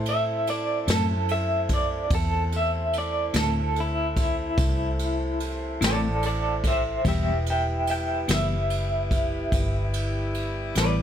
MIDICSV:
0, 0, Header, 1, 7, 480
1, 0, Start_track
1, 0, Tempo, 823949
1, 1228, Time_signature, 12, 3, 24, 8
1, 6420, End_track
2, 0, Start_track
2, 0, Title_t, "Clean electric guitar"
2, 0, Program_c, 0, 27
2, 52, Note_on_c, 0, 76, 96
2, 273, Note_off_c, 0, 76, 0
2, 291, Note_on_c, 0, 74, 90
2, 512, Note_off_c, 0, 74, 0
2, 534, Note_on_c, 0, 69, 62
2, 754, Note_off_c, 0, 69, 0
2, 767, Note_on_c, 0, 76, 101
2, 990, Note_off_c, 0, 76, 0
2, 1011, Note_on_c, 0, 74, 67
2, 1232, Note_off_c, 0, 74, 0
2, 1250, Note_on_c, 0, 69, 82
2, 1472, Note_off_c, 0, 69, 0
2, 1494, Note_on_c, 0, 76, 83
2, 1714, Note_off_c, 0, 76, 0
2, 1738, Note_on_c, 0, 74, 82
2, 1956, Note_off_c, 0, 74, 0
2, 1971, Note_on_c, 0, 69, 75
2, 2192, Note_off_c, 0, 69, 0
2, 2216, Note_on_c, 0, 64, 86
2, 3137, Note_off_c, 0, 64, 0
2, 3411, Note_on_c, 0, 69, 81
2, 3416, Note_on_c, 0, 74, 72
2, 3633, Note_off_c, 0, 74, 0
2, 3639, Note_off_c, 0, 69, 0
2, 3646, Note_on_c, 0, 69, 64
2, 3650, Note_on_c, 0, 74, 69
2, 3860, Note_off_c, 0, 69, 0
2, 3870, Note_off_c, 0, 74, 0
2, 3887, Note_on_c, 0, 72, 72
2, 3888, Note_on_c, 0, 76, 81
2, 4101, Note_off_c, 0, 72, 0
2, 4109, Note_off_c, 0, 76, 0
2, 4124, Note_on_c, 0, 67, 63
2, 4127, Note_on_c, 0, 76, 71
2, 4339, Note_off_c, 0, 67, 0
2, 4349, Note_off_c, 0, 76, 0
2, 4369, Note_on_c, 0, 76, 68
2, 4371, Note_on_c, 0, 79, 82
2, 4581, Note_off_c, 0, 76, 0
2, 4591, Note_off_c, 0, 79, 0
2, 4602, Note_on_c, 0, 76, 71
2, 4608, Note_on_c, 0, 79, 82
2, 4817, Note_off_c, 0, 76, 0
2, 4830, Note_off_c, 0, 79, 0
2, 4853, Note_on_c, 0, 76, 95
2, 5775, Note_off_c, 0, 76, 0
2, 6283, Note_on_c, 0, 71, 79
2, 6287, Note_on_c, 0, 74, 83
2, 6420, Note_off_c, 0, 71, 0
2, 6420, Note_off_c, 0, 74, 0
2, 6420, End_track
3, 0, Start_track
3, 0, Title_t, "Tonewheel organ"
3, 0, Program_c, 1, 16
3, 0, Note_on_c, 1, 64, 65
3, 0, Note_on_c, 1, 69, 66
3, 0, Note_on_c, 1, 72, 65
3, 1208, Note_off_c, 1, 64, 0
3, 1208, Note_off_c, 1, 69, 0
3, 1209, Note_off_c, 1, 72, 0
3, 1229, Note_on_c, 1, 69, 57
3, 1231, Note_on_c, 1, 72, 63
3, 1234, Note_on_c, 1, 64, 61
3, 1468, Note_off_c, 1, 69, 0
3, 1469, Note_off_c, 1, 72, 0
3, 1471, Note_off_c, 1, 64, 0
3, 1478, Note_on_c, 1, 64, 67
3, 1481, Note_on_c, 1, 72, 68
3, 1484, Note_on_c, 1, 69, 70
3, 4088, Note_off_c, 1, 64, 0
3, 4089, Note_off_c, 1, 72, 0
3, 4091, Note_off_c, 1, 69, 0
3, 4120, Note_on_c, 1, 67, 66
3, 4123, Note_on_c, 1, 64, 65
3, 4123, Note_on_c, 1, 71, 69
3, 6420, Note_off_c, 1, 64, 0
3, 6420, Note_off_c, 1, 67, 0
3, 6420, Note_off_c, 1, 71, 0
3, 6420, End_track
4, 0, Start_track
4, 0, Title_t, "Saxophone section"
4, 0, Program_c, 2, 65
4, 0, Note_on_c, 2, 57, 77
4, 0, Note_on_c, 2, 60, 63
4, 0, Note_on_c, 2, 64, 83
4, 3995, Note_off_c, 2, 57, 0
4, 3995, Note_off_c, 2, 60, 0
4, 3995, Note_off_c, 2, 64, 0
4, 4094, Note_on_c, 2, 59, 65
4, 4097, Note_on_c, 2, 55, 82
4, 4099, Note_on_c, 2, 64, 84
4, 6420, Note_off_c, 2, 55, 0
4, 6420, Note_off_c, 2, 59, 0
4, 6420, Note_off_c, 2, 64, 0
4, 6420, End_track
5, 0, Start_track
5, 0, Title_t, "Clean electric guitar"
5, 0, Program_c, 3, 27
5, 508, Note_on_c, 3, 64, 58
5, 512, Note_on_c, 3, 60, 59
5, 517, Note_on_c, 3, 57, 60
5, 520, Note_on_c, 3, 45, 52
5, 652, Note_off_c, 3, 64, 0
5, 654, Note_off_c, 3, 60, 0
5, 657, Note_off_c, 3, 57, 0
5, 658, Note_off_c, 3, 45, 0
5, 1945, Note_on_c, 3, 64, 76
5, 1949, Note_on_c, 3, 60, 62
5, 1953, Note_on_c, 3, 57, 57
5, 1958, Note_on_c, 3, 45, 54
5, 2090, Note_off_c, 3, 64, 0
5, 2092, Note_off_c, 3, 60, 0
5, 2094, Note_off_c, 3, 57, 0
5, 2097, Note_off_c, 3, 45, 0
5, 3384, Note_on_c, 3, 64, 65
5, 3390, Note_on_c, 3, 60, 65
5, 3397, Note_on_c, 3, 57, 60
5, 3399, Note_on_c, 3, 45, 53
5, 3529, Note_off_c, 3, 64, 0
5, 3532, Note_off_c, 3, 60, 0
5, 3535, Note_off_c, 3, 57, 0
5, 3537, Note_off_c, 3, 45, 0
5, 4105, Note_on_c, 3, 52, 68
5, 4111, Note_on_c, 3, 55, 74
5, 4116, Note_on_c, 3, 59, 77
5, 4119, Note_on_c, 3, 64, 75
5, 4249, Note_off_c, 3, 52, 0
5, 4253, Note_off_c, 3, 55, 0
5, 4255, Note_off_c, 3, 59, 0
5, 4256, Note_off_c, 3, 64, 0
5, 4825, Note_on_c, 3, 64, 61
5, 4829, Note_on_c, 3, 59, 63
5, 4831, Note_on_c, 3, 55, 56
5, 4837, Note_on_c, 3, 52, 50
5, 4969, Note_off_c, 3, 64, 0
5, 4971, Note_off_c, 3, 59, 0
5, 4972, Note_off_c, 3, 55, 0
5, 4975, Note_off_c, 3, 52, 0
5, 6265, Note_on_c, 3, 64, 62
5, 6270, Note_on_c, 3, 59, 59
5, 6275, Note_on_c, 3, 55, 59
5, 6278, Note_on_c, 3, 52, 55
5, 6408, Note_off_c, 3, 64, 0
5, 6411, Note_off_c, 3, 59, 0
5, 6414, Note_off_c, 3, 55, 0
5, 6415, Note_off_c, 3, 52, 0
5, 6420, End_track
6, 0, Start_track
6, 0, Title_t, "Fingered electric bass"
6, 0, Program_c, 4, 33
6, 0, Note_on_c, 4, 45, 84
6, 488, Note_off_c, 4, 45, 0
6, 511, Note_on_c, 4, 42, 91
6, 1208, Note_off_c, 4, 42, 0
6, 1228, Note_on_c, 4, 40, 85
6, 1926, Note_off_c, 4, 40, 0
6, 1948, Note_on_c, 4, 38, 86
6, 2646, Note_off_c, 4, 38, 0
6, 2667, Note_on_c, 4, 36, 80
6, 3365, Note_off_c, 4, 36, 0
6, 3389, Note_on_c, 4, 33, 92
6, 4086, Note_off_c, 4, 33, 0
6, 4107, Note_on_c, 4, 28, 78
6, 4804, Note_off_c, 4, 28, 0
6, 4830, Note_on_c, 4, 30, 90
6, 5526, Note_off_c, 4, 30, 0
6, 5546, Note_on_c, 4, 31, 88
6, 6244, Note_off_c, 4, 31, 0
6, 6270, Note_on_c, 4, 33, 89
6, 6420, Note_off_c, 4, 33, 0
6, 6420, End_track
7, 0, Start_track
7, 0, Title_t, "Drums"
7, 32, Note_on_c, 9, 51, 61
7, 90, Note_off_c, 9, 51, 0
7, 274, Note_on_c, 9, 51, 65
7, 332, Note_off_c, 9, 51, 0
7, 511, Note_on_c, 9, 51, 88
7, 524, Note_on_c, 9, 38, 116
7, 569, Note_off_c, 9, 51, 0
7, 582, Note_off_c, 9, 38, 0
7, 749, Note_on_c, 9, 51, 64
7, 807, Note_off_c, 9, 51, 0
7, 984, Note_on_c, 9, 51, 60
7, 987, Note_on_c, 9, 36, 75
7, 1042, Note_off_c, 9, 51, 0
7, 1045, Note_off_c, 9, 36, 0
7, 1226, Note_on_c, 9, 51, 82
7, 1227, Note_on_c, 9, 36, 106
7, 1284, Note_off_c, 9, 51, 0
7, 1285, Note_off_c, 9, 36, 0
7, 1469, Note_on_c, 9, 51, 54
7, 1527, Note_off_c, 9, 51, 0
7, 1708, Note_on_c, 9, 51, 58
7, 1766, Note_off_c, 9, 51, 0
7, 1944, Note_on_c, 9, 51, 82
7, 1957, Note_on_c, 9, 38, 110
7, 2002, Note_off_c, 9, 51, 0
7, 2016, Note_off_c, 9, 38, 0
7, 2190, Note_on_c, 9, 51, 54
7, 2249, Note_off_c, 9, 51, 0
7, 2427, Note_on_c, 9, 36, 80
7, 2427, Note_on_c, 9, 51, 57
7, 2485, Note_off_c, 9, 36, 0
7, 2485, Note_off_c, 9, 51, 0
7, 2667, Note_on_c, 9, 36, 107
7, 2667, Note_on_c, 9, 51, 73
7, 2725, Note_off_c, 9, 36, 0
7, 2726, Note_off_c, 9, 51, 0
7, 2908, Note_on_c, 9, 51, 60
7, 2966, Note_off_c, 9, 51, 0
7, 3147, Note_on_c, 9, 51, 57
7, 3205, Note_off_c, 9, 51, 0
7, 3389, Note_on_c, 9, 51, 90
7, 3403, Note_on_c, 9, 38, 109
7, 3447, Note_off_c, 9, 51, 0
7, 3461, Note_off_c, 9, 38, 0
7, 3626, Note_on_c, 9, 51, 66
7, 3685, Note_off_c, 9, 51, 0
7, 3867, Note_on_c, 9, 36, 72
7, 3868, Note_on_c, 9, 51, 61
7, 3925, Note_off_c, 9, 36, 0
7, 3926, Note_off_c, 9, 51, 0
7, 4106, Note_on_c, 9, 51, 79
7, 4107, Note_on_c, 9, 36, 99
7, 4165, Note_off_c, 9, 36, 0
7, 4165, Note_off_c, 9, 51, 0
7, 4347, Note_on_c, 9, 51, 64
7, 4406, Note_off_c, 9, 51, 0
7, 4585, Note_on_c, 9, 51, 66
7, 4643, Note_off_c, 9, 51, 0
7, 4826, Note_on_c, 9, 51, 94
7, 4839, Note_on_c, 9, 38, 105
7, 4884, Note_off_c, 9, 51, 0
7, 4897, Note_off_c, 9, 38, 0
7, 5069, Note_on_c, 9, 51, 59
7, 5127, Note_off_c, 9, 51, 0
7, 5307, Note_on_c, 9, 36, 76
7, 5308, Note_on_c, 9, 51, 64
7, 5365, Note_off_c, 9, 36, 0
7, 5367, Note_off_c, 9, 51, 0
7, 5547, Note_on_c, 9, 36, 94
7, 5547, Note_on_c, 9, 51, 76
7, 5605, Note_off_c, 9, 36, 0
7, 5606, Note_off_c, 9, 51, 0
7, 5788, Note_on_c, 9, 51, 65
7, 5846, Note_off_c, 9, 51, 0
7, 6026, Note_on_c, 9, 51, 52
7, 6085, Note_off_c, 9, 51, 0
7, 6264, Note_on_c, 9, 51, 80
7, 6277, Note_on_c, 9, 38, 107
7, 6322, Note_off_c, 9, 51, 0
7, 6336, Note_off_c, 9, 38, 0
7, 6420, End_track
0, 0, End_of_file